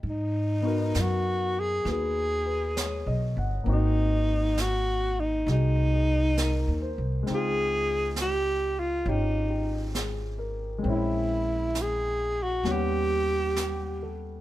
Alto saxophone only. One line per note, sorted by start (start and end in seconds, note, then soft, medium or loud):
0.09 1.02 D#4 medium
1.01 1.61 F#4 medium
1.59 1.88 G#4 medium
1.92 3.35 G#4 medium
3.73 4.63 D#4 medium
4.61 5.21 F#4 medium
5.20 5.49 D#4 medium
5.51 6.95 D#4 medium
7.34 8.16 G#4 medium
8.21 8.81 G4 medium
8.79 9.11 F4 medium
9.09 9.97 D#4 medium
10.92 11.83 E4 medium
11.82 12.44 G#4 medium
12.43 12.73 F#4 medium
12.72 14.20 G4 medium